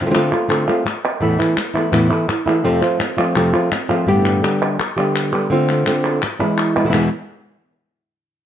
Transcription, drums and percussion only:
0.15 clap loud
0.32 clap medium
0.51 clap medium
0.68 clap medium
0.86 clap loud
1.05 clap medium
1.40 clap medium
1.57 clap loud
1.93 clap medium
2.11 clap soft
2.29 clap loud
2.48 clap medium
2.82 clap medium
3.00 clap medium
3.36 clap medium
3.72 clap loud
3.90 clap medium
4.26 clap medium
4.44 clap medium
4.62 clap medium
4.80 clap medium
5.16 clap medium
5.33 clap medium
5.69 clap medium
5.87 clap medium
6.04 clap medium
6.22 clap medium
6.58 clap loud
6.76 clap medium
6.93 clap loud

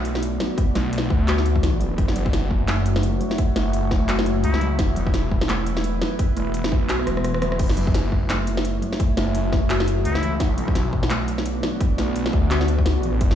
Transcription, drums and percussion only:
0.05 closed hi-hat medium
0.15 snare medium
0.23 closed hi-hat medium
0.40 snare medium
0.40 closed hi-hat soft
0.58 kick loud
0.58 closed hi-hat medium
0.75 snare medium
0.75 closed hi-hat medium
0.93 closed hi-hat medium
0.98 snare medium
1.10 kick loud
1.28 clap loud
1.28 closed hi-hat medium
1.38 snare soft
1.46 closed hi-hat medium
1.56 kick medium
1.63 snare medium
1.63 closed hi-hat medium
1.81 closed hi-hat soft
1.98 kick loud
1.98 closed hi-hat medium
2.08 snare medium
2.16 closed hi-hat medium
2.26 kick loud
2.33 snare medium
2.33 closed hi-hat medium
2.51 kick medium
2.68 clap loud
2.68 snare soft
2.68 closed hi-hat medium
2.86 closed hi-hat medium
2.96 snare medium
3.03 closed hi-hat medium
3.21 closed hi-hat soft
3.31 snare soft
3.38 kick loud
3.38 closed hi-hat medium
3.56 snare medium
3.56 closed hi-hat medium
3.73 closed hi-hat medium
3.91 kick loud
3.91 snare medium
4.09 clap loud
4.09 closed hi-hat medium
4.19 snare medium
4.26 closed hi-hat medium
4.44 closed hi-hat medium
4.54 snare medium
4.61 closed hi-hat soft
4.79 kick loud
4.79 snare medium
4.79 closed hi-hat medium
4.96 closed hi-hat medium
5.07 kick loud
5.14 snare medium
5.14 closed hi-hat medium
5.32 kick medium
5.41 snare medium
5.49 clap loud
5.49 closed hi-hat medium
5.67 closed hi-hat medium
5.77 snare medium
5.84 closed hi-hat medium
6.02 snare medium
6.02 closed hi-hat soft
6.19 kick loud
6.19 closed hi-hat medium
6.37 closed hi-hat medium
6.54 closed hi-hat medium
6.64 snare medium
6.72 kick loud
6.89 cross-stick medium
6.89 clap loud
6.89 closed hi-hat medium
6.99 cross-stick medium
7.07 cross-stick medium
7.07 closed hi-hat medium
7.17 cross-stick medium
7.24 cross-stick medium
7.24 closed hi-hat medium
7.34 cross-stick medium
7.42 cross-stick loud
7.42 closed hi-hat soft
7.52 cross-stick medium
7.59 kick loud
7.59 closed hi-hat medium
7.59 crash medium
7.70 snare medium
7.77 closed hi-hat medium
7.87 kick loud
7.94 snare medium
7.94 closed hi-hat medium
8.12 kick medium
8.30 clap loud
8.30 snare medium
8.30 closed hi-hat medium
8.47 closed hi-hat medium
8.57 snare medium
8.65 closed hi-hat medium
8.82 closed hi-hat soft
8.93 snare medium
9.00 kick loud
9.00 closed hi-hat medium
9.17 snare medium
9.17 closed hi-hat medium
9.35 closed hi-hat medium
9.52 kick loud
9.52 snare medium
9.70 clap loud
9.70 closed hi-hat medium
9.80 snare medium
9.88 closed hi-hat medium
10.05 closed hi-hat medium
10.15 snare medium
10.23 closed hi-hat soft
10.40 kick loud
10.40 snare medium
10.40 closed hi-hat medium
10.58 closed hi-hat medium
10.68 kick loud
10.75 snare medium
10.75 closed hi-hat medium
10.93 kick medium
11.03 snare medium
11.10 clap loud
11.10 closed hi-hat medium
11.28 closed hi-hat medium
11.38 snare medium
11.46 closed hi-hat medium
11.63 snare medium
11.63 closed hi-hat soft
11.81 kick loud
11.81 closed hi-hat medium
11.98 snare medium
11.98 closed hi-hat medium
12.16 closed hi-hat medium
12.26 snare medium
12.33 kick loud
12.51 clap loud
12.51 closed hi-hat medium
12.61 snare medium
12.68 closed hi-hat medium
12.78 kick medium
12.86 snare medium
12.86 closed hi-hat medium
13.03 closed hi-hat soft
13.21 kick loud
13.21 closed hi-hat medium
13.31 snare medium

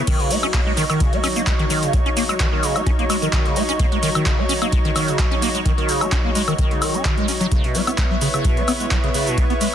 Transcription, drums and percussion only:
0.07 kick loud
0.07 closed hi-hat medium
0.07 crash medium
0.07 shaker soft
0.20 closed hi-hat soft
0.31 open hi-hat loud
0.31 shaker medium
0.43 closed hi-hat medium
0.43 high woodblock medium
0.43 shaker soft
0.54 kick loud
0.54 clap loud
0.54 closed hi-hat medium
0.54 shaker soft
0.77 open hi-hat loud
0.77 shaker medium
0.90 closed hi-hat medium
0.90 high woodblock medium
0.90 shaker soft
1.00 kick loud
1.00 closed hi-hat medium
1.00 shaker soft
1.13 closed hi-hat soft
1.24 open hi-hat loud
1.24 high woodblock medium
1.24 shaker medium
1.36 closed hi-hat medium
1.36 shaker soft
1.47 kick loud
1.47 clap loud
1.47 closed hi-hat medium
1.47 shaker soft
1.59 closed hi-hat soft
1.70 open hi-hat loud
1.70 shaker medium
1.83 closed hi-hat medium
1.83 shaker soft
1.93 kick loud
1.93 closed hi-hat medium
1.93 shaker soft
2.06 closed hi-hat soft
2.17 open hi-hat loud
2.17 shaker medium
2.29 closed hi-hat medium
2.29 high woodblock medium
2.29 shaker soft
2.40 kick loud
2.40 clap loud
2.40 closed hi-hat medium
2.40 shaker soft
2.63 open hi-hat loud
2.63 shaker medium
2.76 closed hi-hat medium
2.76 high woodblock medium
2.76 shaker soft
2.86 kick loud
2.86 closed hi-hat medium
2.86 shaker soft
2.99 closed hi-hat soft
3.10 open hi-hat loud
3.10 high woodblock medium
3.10 shaker medium
3.22 closed hi-hat medium
3.22 shaker soft
3.33 kick loud
3.33 clap loud
3.33 closed hi-hat medium
3.33 shaker soft
3.45 closed hi-hat soft
3.56 open hi-hat loud
3.56 shaker medium
3.69 closed hi-hat medium
3.69 shaker soft
3.79 kick loud
3.79 closed hi-hat medium
3.79 shaker soft
3.92 closed hi-hat soft
4.03 open hi-hat loud
4.03 shaker medium
4.15 closed hi-hat medium
4.15 high woodblock medium
4.15 shaker soft
4.26 kick loud
4.26 clap loud
4.26 closed hi-hat medium
4.26 shaker soft
4.49 open hi-hat loud
4.49 shaker medium
4.62 closed hi-hat medium
4.62 high woodblock medium
4.62 shaker soft
4.72 kick loud
4.72 closed hi-hat medium
4.72 shaker soft
4.85 closed hi-hat soft
4.96 open hi-hat loud
4.96 high woodblock medium
4.96 shaker medium
5.08 closed hi-hat medium
5.08 shaker soft
5.19 kick loud
5.19 clap loud
5.19 closed hi-hat medium
5.19 shaker soft
5.32 closed hi-hat soft
5.42 open hi-hat loud
5.42 shaker medium
5.55 closed hi-hat medium
5.55 shaker soft
5.66 kick loud
5.66 closed hi-hat medium
5.66 shaker soft
5.78 closed hi-hat soft
5.89 open hi-hat loud
5.89 shaker medium
6.01 closed hi-hat medium
6.01 high woodblock medium
6.01 shaker soft
6.12 kick loud
6.12 clap loud
6.12 closed hi-hat medium
6.12 shaker soft
6.35 open hi-hat loud
6.35 shaker medium
6.48 closed hi-hat soft
6.48 high woodblock medium
6.48 shaker soft
6.58 kick loud
6.58 closed hi-hat medium
6.58 shaker soft
6.71 closed hi-hat soft
6.82 open hi-hat loud
6.82 high woodblock medium
6.82 shaker medium
6.94 closed hi-hat medium
6.94 shaker soft
7.05 kick loud
7.05 clap loud
7.05 closed hi-hat medium
7.05 shaker soft
7.18 closed hi-hat soft
7.28 open hi-hat loud
7.28 shaker medium
7.41 closed hi-hat medium
7.41 shaker soft
7.52 kick loud
7.52 closed hi-hat medium
7.52 shaker soft
7.64 closed hi-hat soft
7.75 open hi-hat loud
7.75 shaker medium
7.87 closed hi-hat medium
7.87 high woodblock medium
7.87 shaker soft
7.98 kick loud
7.98 clap loud
7.98 closed hi-hat medium
7.98 shaker soft
8.21 open hi-hat loud
8.21 shaker medium
8.34 closed hi-hat medium
8.34 high woodblock medium
8.34 shaker soft
8.45 kick loud
8.45 closed hi-hat medium
8.45 shaker soft
8.57 closed hi-hat soft
8.68 open hi-hat loud
8.68 high woodblock medium
8.68 shaker medium
8.80 closed hi-hat soft
8.80 shaker soft
8.91 kick loud
8.91 clap loud
8.91 closed hi-hat medium
8.91 shaker soft
9.04 closed hi-hat soft
9.14 open hi-hat loud
9.14 shaker medium
9.27 closed hi-hat medium
9.27 shaker soft
9.38 kick loud
9.38 closed hi-hat medium
9.38 shaker soft
9.50 closed hi-hat soft
9.61 open hi-hat loud
9.61 shaker medium

